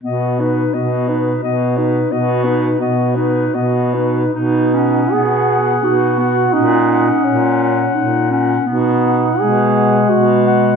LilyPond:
<<
  \new Staff \with { instrumentName = "Clarinet" } { \time 3/4 \key b \major \tempo 4 = 85 dis''8 b'8 dis''8 b'8 dis''8 b'8 | dis''8 b'8 dis''8 b'8 dis''8 b'8 | r8 fis''4 fis''4 fis''8 | fis''8 fis''4 fis''4 fis''8 |
r8 fis''4 fis''4 fis''8 | }
  \new Staff \with { instrumentName = "Alto saxophone" } { \time 3/4 \key b \major fis'8 dis'8 fis'8 dis'8 fis'8 dis'8 | fis'8 dis'8 fis'8 dis'8 fis'8 dis'8 | dis'4 gis'4 fis'4 | dis'4 cis'4. r8 |
dis'4 gis'4 fis'4 | }
  \new Staff \with { instrumentName = "Clarinet" } { \time 3/4 \key b \major b8 dis'8 b8 dis'8 b8 dis'8 | b8 dis'8 b8 dis'8 b8 dis'8 | dis'8 cis'8 b4 dis'8 b8 | cis'2 dis'8 cis'8 |
b4 gis2 | }
  \new Staff \with { instrumentName = "Baritone saxophone" } { \clef bass \time 3/4 \key b \major b,4 b,4 b,4 | b,4 b,4 b,4 | b,4 b,4 b,4 | ais,4 ais,4 ais,4 |
b,4 b,4 b,4 | }
>>